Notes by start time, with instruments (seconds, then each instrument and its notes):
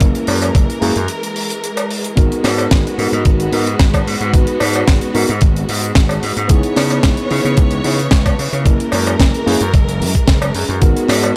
Already playing: string section E3
0.00 slap bass F#1, string section G#3 A#4, tine electric piano A#3 C#4 E4 A#4, kick, closed hi-hat
0.15 closed hi-hat
0.27 slap bass F#2, open hi-hat, cowbell
0.42 closed hi-hat, cowbell
0.55 slap bass F#1, kick, closed hi-hat
0.70 closed hi-hat
0.81 slap bass F#2, tine electric piano A#3 C#4 E4 G#4, open hi-hat
0.96 slap bass F#2, closed hi-hat
1.08 closed hi-hat
1.23 closed hi-hat
1.36 open hi-hat
1.50 closed hi-hat
1.64 closed hi-hat
1.77 closed hi-hat, cowbell
1.91 open hi-hat
2.04 closed hi-hat
2.16 slap bass G#1, tine electric piano B3 D#4 F#4 A#4, string section B3 F#4, kick, closed hi-hat
2.32 closed hi-hat
2.44 slap bass G#2, snare, open hi-hat, cowbell
2.58 closed hi-hat, cowbell
2.71 slap bass G#1, kick, snare, closed hi-hat
2.87 closed hi-hat
2.98 slap bass G#2, tine electric piano B3 D#4 F#4 A#4, open hi-hat
3.12 slap bass G#2, closed hi-hat
3.25 slap bass G#1, kick, closed hi-hat
3.40 closed hi-hat
3.52 slap bass G#2, tine electric piano B3 D#4 F#4 A#4, open hi-hat
3.67 closed hi-hat
3.79 slap bass G#1, kick, snare, closed hi-hat
3.94 kick, closed hi-hat, cowbell
4.07 slap bass G#2, open hi-hat
4.21 slap bass G#2, closed hi-hat
4.33 slap bass G#1, tine electric piano B3 D#4 F#4 B4, kick, closed hi-hat
4.47 closed hi-hat
4.60 slap bass G#2, open hi-hat, cowbell
4.73 closed hi-hat, cowbell
4.88 slap bass G#1, kick, snare, closed hi-hat
5.01 closed hi-hat
5.14 slap bass G#2, tine electric piano B3 D#4 F#4 A#4, open hi-hat
5.29 slap bass G#2, closed hi-hat
5.41 slap bass G#1, kick, closed hi-hat
5.56 closed hi-hat
5.69 slap bass G#2, open hi-hat
5.83 closed hi-hat
5.95 slap bass G#1, kick, snare, closed hi-hat
6.09 closed hi-hat, cowbell
6.23 slap bass G#2, open hi-hat
6.37 slap bass G#2, closed hi-hat
6.48 slap bass C#2, string section E3 B3 C#5, tine electric piano B3 D#4 E4 G#4, kick, closed hi-hat
6.63 closed hi-hat
6.76 slap bass C#3, snare, open hi-hat, cowbell
6.90 closed hi-hat, cowbell
7.03 slap bass C#2, kick, snare, closed hi-hat
7.17 closed hi-hat
7.30 slap bass C#3, tine electric piano B3 D#4 E4 G#4, open hi-hat
7.45 slap bass C#3, closed hi-hat
7.57 slap bass C#2, kick, closed hi-hat
7.71 closed hi-hat
7.84 slap bass C#3, tine electric piano B3 D#4 E4 G#4, open hi-hat
7.99 closed hi-hat
8.11 slap bass C#2, kick, snare, closed hi-hat
8.26 kick, closed hi-hat, cowbell
8.39 slap bass C#3, open hi-hat
8.53 slap bass C#3, closed hi-hat
8.64 slap bass F#1, string section G#3 A#4, tine electric piano A#3 C#4 E4 A#4, kick, closed hi-hat
8.80 closed hi-hat
8.92 slap bass F#2, open hi-hat, cowbell
9.07 closed hi-hat, cowbell
9.20 slap bass F#1, kick, snare, closed hi-hat
9.34 closed hi-hat
9.46 slap bass F#2, tine electric piano A#3 C#4 E4 G#4, open hi-hat
9.61 slap bass F#2, closed hi-hat
9.74 slap bass F#1, kick, closed hi-hat
9.89 closed hi-hat
10.01 slap bass F#2, open hi-hat
10.15 muted slap bass stroke, kick, closed hi-hat
10.28 slap bass F#1, kick, snare, closed hi-hat
10.42 closed hi-hat, cowbell
10.54 slap bass F#2, open hi-hat
10.69 slap bass F#2, closed hi-hat
10.81 slap bass G#1, tine electric piano B3 D#4 F#4 A#4, string section B3 F#4, kick, closed hi-hat
10.97 closed hi-hat
11.08 slap bass G#2, snare, open hi-hat, cowbell
11.23 closed hi-hat, cowbell